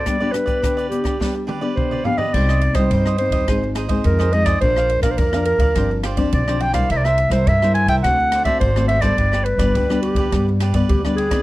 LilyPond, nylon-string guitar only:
\new Staff \with { instrumentName = "Nylon-string guitar" } { \time 4/4 \key c \minor \tempo 4 = 105 << { <b d' g'>16 <b d' g'>16 <b d' g'>4 <b d' g'>8 <b d' g'>8. <b d' g'>8. <b d' g'>16 r16 | <g c' ees'>8. <g c' ees'>8. <g c' ees'>8 <aes c' ees'>8. <aes c' ees'>8. <aes c' ees'>8 | <f bes d'>8. <f bes d'>8 <f bes d'>8. <f c' d'>8 r16 <f c' d'>8 <f c' d'>8 <g bes e'>16~ | <g bes e'>8. <g bes e'>8 <g bes e'>8. <a c' fis'>8. <a c' fis'>8 <a c' fis'>8 <g b d'>16~ |
<g b d'>8. <g b d'>8 <g b d'>8. <g b d'>8. <g b d'>8 <g b d'>8 <c' ees'>16 | } \\ { g4 d4 g4 d4 | c4 g,4 aes,4 ees4 | bes,4 f4 g,4 d4 | c4 g,4 d4 r4 |
g,4 d4 g,4 d4 | } >> }